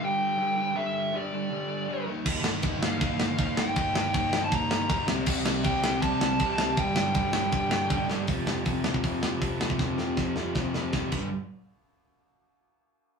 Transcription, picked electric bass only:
2.26 G1
2.63 G1
3.01 G1
3.39 G1
3.57 G1
3.76 G1
4.14 G1
4.52 G1
4.90 G1
5.09 C2
5.27 C2
5.65 C2
6.03 C2
6.40 C2
6.60 C2
6.78 G1
7.15 G1
7.53 G1
7.91 G1
8.09 G1
8.29 F1
8.46 F1
8.66 F1
8.84 F1
9.04 F1
9.23 F1
9.42 F1
9.61 F1
9.80 F1
9.99 F1
10.17 F1
10.37 F1
10.56 F1
10.75 F1
10.93 F1
11.12 G1

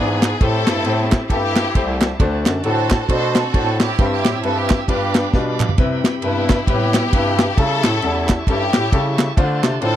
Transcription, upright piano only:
Already playing: E3 B3 E4 G#4 D5
0.41 A2 A3 E4 G4 C5
0.85 A3 E4 G4 C5
1.30 A3 E4 G4 A4
1.75 A3 E4 G4 C5
2.20 D3 A3 D4 F#4 C5
2.64 A3 D4 F#4 A4
3.08 A3 D4 F#4 C5
3.54 A3 D4 F#4 C5
3.98 G2 G3 C4 E4 C5
4.43 G3 C4 E4 B4
4.88 G2 G3 D4 F4 B4
5.33 G3 D4 F4 B4
5.78 C3 G3 C4 E4 B4
6.23 C3 G3 E4 B4
6.68 C3 G3 E4 B4
7.12 C3 G3 E4 B4
7.58 C#3 G3 C#4 E4 A4
8.02 G3 C#4 E4 A4
8.48 G3 C#4 E4 A4
8.93 G3 C#4 E4 A4
9.37 D3 A3 D4 F4 C5
9.81 A3 D4 F4 C5

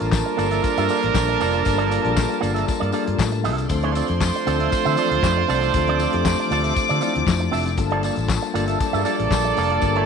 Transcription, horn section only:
Already playing: F3 D4 A#4
3.71 A3 F4 C5
8.81 A#3 A4 D5

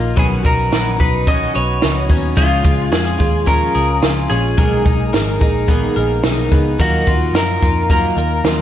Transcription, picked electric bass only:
Already playing: A#1
0.17 B1
0.45 B1
0.72 A#1
1.00 B1
1.56 B1
1.84 C#2
2.10 D#2
2.37 C#2
2.65 C#2
2.92 F2
3.20 D#2
3.76 C#2
4.03 C#2
4.31 A#1
4.58 B1
4.86 B1
5.14 G#1
5.41 A#1
5.97 A#1
6.24 B1
6.52 C#2
6.79 D#2
7.07 D#2
7.33 F#2
7.63 F2
8.17 D#2
8.44 D#2

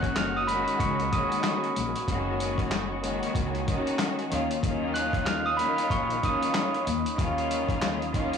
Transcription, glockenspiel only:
Already playing: F#6 F#7
0.16 F6 F7
0.37 D#6 D#7
0.47 B5 B6
0.80 C#6 C#7
1.12 D#6 D#7
4.94 F#6 F#7
5.26 F6 F7
5.46 D#6 D#7
5.57 B5 B6
5.91 C#6 C#7
6.24 D#6 D#7

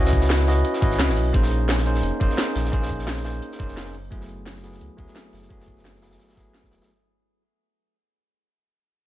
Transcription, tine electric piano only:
Already playing: C#4 E4 F#4 B4 D#5
0.47 C#4 E4 F#4 B4 D#5
0.81 C#4 E4 F#4 B4 D#5
1.33 A#3 C#4 D#4 G#4 C5
1.86 A#3 C#4 D#4 G#4 C5
2.20 A#3 C#4 D#4 G#4 C5
2.72 A#3 C#4 D#4 G#4 C5
3.24 A#3 C#4 D#4 G#4 C5
3.59 A#3 C#4 D#4 G#4 C5
4.10 F#3 A3 B3 E4 G#4
4.63 F#3 A3 B3 E4 G#4
4.97 F#3 A3 B3 E4 G#4
5.49 F#3 A3 B3 E4 G#4
6.02 F#3 A3 B3 E4 G#4
6.36 F#3 A3 B3 E4 G#4

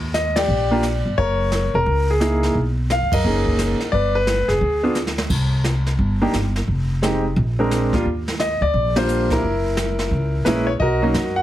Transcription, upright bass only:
Already playing: D#2
0.48 A#1
1.05 G1
1.18 F#1
1.74 E1
1.86 C#2
2.55 B1
3.01 D#2
3.13 F#2
3.24 F#1
3.93 G1
4.48 F1
4.61 D2
5.30 C2
5.99 G1
6.32 G1
6.67 F1
7.36 A#1
8.05 D#2
8.61 D2
8.74 A#1
9.42 F#1
10.11 C#2
10.45 A#1
10.80 B1
11.14 F#2

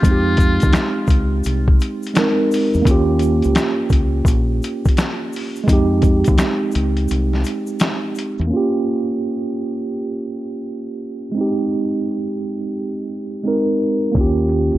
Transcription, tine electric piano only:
0.02 G#3 C4
0.08 D#4 G4
2.14 G#3 C4 D#4
2.18 A#4
2.82 A#3 C#4
2.88 F4 G4
5.64 G#3 C4
5.70 D#4 G4
8.47 A#3 C#4
8.53 F4 G4
11.32 G#3 C4
11.38 D#4 G4
13.43 G#3 C4 D#4
13.48 A#4
14.12 A#3 C#4
14.18 F4 G4

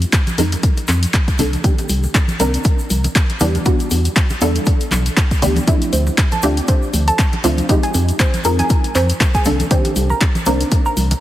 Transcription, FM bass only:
0.38 F2
0.89 F2
1.39 C2
1.89 C2
2.40 C2
2.90 C2
3.41 E2
3.91 E2
4.41 E2
4.92 B1
5.42 D2
5.93 D2
6.43 D2
6.94 D2
7.44 D2
7.94 F2
8.45 F2
8.95 F2
9.46 C2
9.96 C2
10.46 C2
10.97 C2

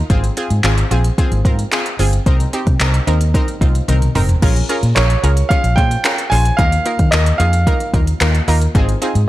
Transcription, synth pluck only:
0.10 C4 F4 G#4
0.37 C4 F4 G#4
0.64 C4 F4 G#4
0.91 C4 F4 G#4
1.18 C4 F4 G#4
1.45 C4 F4 A#4
1.72 C4 F4 G#4
1.99 C4 F4 G#4
2.26 C4 D#4 A#4
2.53 C4 D#4 G4
2.80 C4 D#4 A#4
3.07 C4 D#4 A#4
3.34 C4 D#4 A#4
3.61 C4 D#4 F4
3.88 C4 D#4 A#4
4.15 C4 D#4 A#4
4.42 C#4 F4 G#4 A#4
4.69 C#4 F4 G#4 A#4
4.96 C#4 F4 G#4 A#4
5.23 C#4 F4 G#4 A#4
5.50 C#4 F4 G#4 C#5
5.77 C#4 F4 G#4 C5
6.04 C#4 F4 G#4 A#4
6.31 C#4 F4 G#4 C5
6.59 A#3 D#4 F4 A#4
6.86 A#3 D#4 F4 A#4
7.13 A#3 D#4 F4 A#4
7.40 A#3 D#4 F4 G#4
7.67 A#3 D#4 F4 A#4
7.94 A#3 D#4 F4 A#4
8.21 A#3 D#4 F4 A#4
8.48 A#3 D#4 F4 A#4
8.75 C4 D#4 F4 G#4
9.02 C4 D#4 F4 G#4

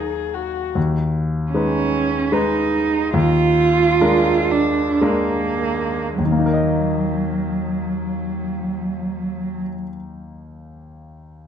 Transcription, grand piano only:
Already playing: D#2 F#3 D#4 A#4
0.75 D#2
1.54 G#3 D#4 B4
2.32 G#3 D#4 B4
3.14 D#2
4.01 G#3 D4 A#4
5.01 G#3 D4 A#4
6.18 D#2
6.25 D#3
6.32 A#3
6.39 D#4
6.46 A#4
6.53 D#5

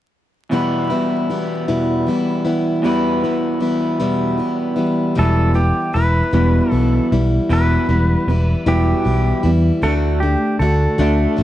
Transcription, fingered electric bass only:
5.18 E1
5.95 E1
6.33 E1
6.72 B1
7.12 B1
7.50 E1
7.89 E1
8.27 E1
8.66 E1
9.06 B1
9.44 E2
9.82 D2
10.60 D2
10.99 D2
11.38 A1

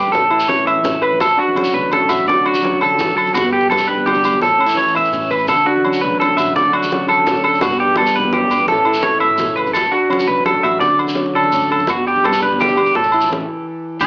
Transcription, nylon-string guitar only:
Already playing: G2 G3 B3 D4
0.12 A2
0.31 E4
0.49 E3 C#4
0.67 E4
0.84 A2 C#4
1.02 B4
1.19 muted nylon-string guitar stroke
1.38 D4
1.55 F#3 C#4
1.74 D4
1.92 A2 C#4
2.10 F#4
2.27 D3
2.46 D4
2.62 F#3 C#4
2.81 D3
2.98 E3
3.16 F#3
3.34 G2
3.70 G3 B3
3.88 D4
4.07 D3
4.24 G4
4.42 A2
4.58 C#4
4.66 E4
4.74 E3 C#4
4.94 E4
5.12 A2 C#4
5.31 B4
5.49 D3
5.67 D4
5.85 F#3 C#4
6.04 D4
6.20 C#4, muted nylon-string guitar stroke
6.40 F#4
6.57 D3
6.73 D4
6.92 F#3 C#4
7.09 D4
7.28 A2 C#4
7.48 A4
7.64 G2
7.82 D4
8.00 G3 B3
8.35 F#2
8.52 G2
8.70 A2 E3 C#4 E4 A4
8.86 E4
9.02 E3 C#4
9.21 A2
9.37 B2
9.54 C#3
9.72 muted nylon-string guitar stroke
9.92 D4
10.09 F#3 C#4
10.28 D4
10.45 A2 C#4
10.65 F#4
10.82 D3
10.99 D4
11.15 F#3 C#4
11.35 D4
11.52 A2 C#4
11.71 A4
12.07 D4
12.23 G3 B3
12.42 D4
12.58 D3 B3
12.76 G4
12.95 A2
13.14 E4
13.29 E3 C#4
14.02 D3

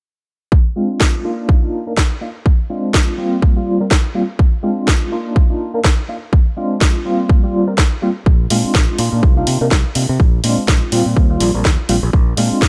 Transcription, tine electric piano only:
0.76 G#3 C4 D4 F4
1.24 A#3 D4 D#4 F4
1.62 A#3 D4 D#4 F4
1.87 A#3 D4 D#4 A#4
2.21 A#3 D4 D#4 F4
2.69 G#3 C4 D4 F4
3.18 G3 A#3 C4 F4
3.56 G3 A#3 C4 F4
3.80 G3 A#3 C4 A#4
4.15 G3 A#3 C4 F4
4.63 G#3 C4 D4 F4
5.12 A#3 D4 D#4 F4
5.50 A#3 D4 D#4 F4
5.74 A#3 D4 D#4 A#4
6.08 A#3 D4 D#4 F4
6.57 G#3 C4 D4 F4
7.05 G3 A#3 C4 F4
7.43 G3 A#3 C4 F4
7.67 G3 A#3 C4 A#4
8.02 G3 A#3 C4 F4
8.50 G#3 C4 D4 F4
8.99 A#3 D4 D#4 F4
9.37 A#3 D4 D#4 F4
9.61 A#3 D4 D#4 A#4
9.95 A#3 D4 D#4 F4
10.44 G#3 C4 D4 F4
10.92 G3 A#3 C4 F4
11.30 G3 A#3 C4 F4
11.54 G3 A#3 C4 A#4
11.89 G3 A#3 C4 F4
12.37 G#3 C4 D4 F4

